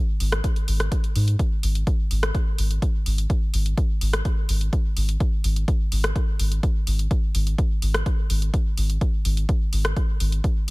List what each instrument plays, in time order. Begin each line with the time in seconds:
0.20 sub bass G#1, open hi-hat
0.32 cross-stick, closed hi-hat
0.44 kick, closed hi-hat
0.56 closed hi-hat
0.68 sub bass G#1, open hi-hat
0.80 cross-stick, closed hi-hat
0.92 kick, closed hi-hat
1.04 closed hi-hat
1.16 sub bass G#2, open hi-hat
1.28 closed hi-hat
1.39 kick, closed hi-hat
1.63 sub bass G#1, open hi-hat
1.75 closed hi-hat
1.87 kick, closed hi-hat
2.11 sub bass G#1, open hi-hat
2.23 cross-stick, closed hi-hat
2.35 kick, closed hi-hat
2.58 sub bass G#1, open hi-hat
2.71 closed hi-hat
2.82 kick, closed hi-hat
3.06 sub bass G#1, open hi-hat
3.18 closed hi-hat
3.30 kick, closed hi-hat
3.54 sub bass G#1, open hi-hat
3.66 closed hi-hat
3.78 kick, closed hi-hat
4.01 sub bass G#1, open hi-hat
4.13 cross-stick, closed hi-hat
4.25 kick, closed hi-hat
4.49 sub bass G#1, open hi-hat
4.61 closed hi-hat
4.73 kick, closed hi-hat
4.97 sub bass G#1, open hi-hat
5.09 closed hi-hat
5.20 kick, closed hi-hat
5.44 sub bass G#1, open hi-hat
5.56 closed hi-hat
5.68 kick, closed hi-hat
5.92 sub bass G#1, open hi-hat
6.04 cross-stick, closed hi-hat
6.16 kick, closed hi-hat
6.39 sub bass G#1, open hi-hat
6.52 closed hi-hat
6.63 kick, closed hi-hat
6.87 sub bass G#1, open hi-hat
6.99 closed hi-hat
7.11 kick, closed hi-hat
7.35 sub bass G#1, open hi-hat
7.47 closed hi-hat
7.58 kick, closed hi-hat
7.82 sub bass G#1, open hi-hat
7.94 cross-stick, closed hi-hat
8.06 kick, closed hi-hat
8.30 sub bass G#1, open hi-hat
8.42 closed hi-hat
8.54 kick, closed hi-hat
8.77 sub bass G#1, open hi-hat
8.90 closed hi-hat
9.01 kick, closed hi-hat
9.25 sub bass G#1, open hi-hat
9.37 closed hi-hat
9.49 kick, closed hi-hat
9.73 sub bass G#1, open hi-hat
9.85 cross-stick, closed hi-hat
9.97 kick, closed hi-hat
10.20 sub bass G#1, open hi-hat
10.32 closed hi-hat
10.44 kick, closed hi-hat